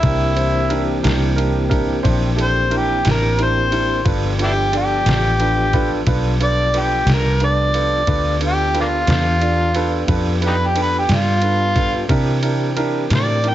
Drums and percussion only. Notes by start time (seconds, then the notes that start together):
0.03 kick, ride
0.37 ride
0.70 ride
1.04 snare, ride
1.38 ride
1.71 kick, ride
2.05 kick, ride
2.38 ride
2.71 ride
3.05 snare, ride
3.39 ride
3.72 ride
4.06 kick, ride
4.39 ride
4.73 ride
5.06 snare, ride
5.40 ride
5.73 kick, ride
6.07 kick, ride
6.41 ride
6.74 ride
7.07 snare, ride
7.40 ride
7.74 ride
8.07 kick, ride
8.41 ride
8.75 ride
9.07 snare, ride
9.41 ride
9.74 ride
10.08 kick, ride
10.42 ride
10.76 ride
11.09 snare, ride
11.42 ride
11.76 kick, ride
12.09 kick, ride
12.43 ride
12.77 ride
13.10 snare, ride
13.44 ride